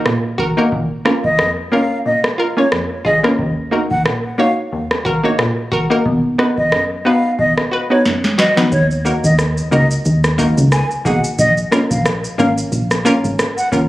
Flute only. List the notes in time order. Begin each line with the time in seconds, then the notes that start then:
1.24 D#5
1.73 F5
2.06 D#5
2.58 C#5
3.05 D#5
3.91 F#5
4.39 F5
6.58 D#5
7.05 F5
7.39 D#5
7.91 C#5
8.39 D#5
8.72 C#5
9.24 D#5
9.72 D#5
10.73 G#5
11.06 F#5
11.39 D#5
11.91 F5
12.39 F5
13.57 F#5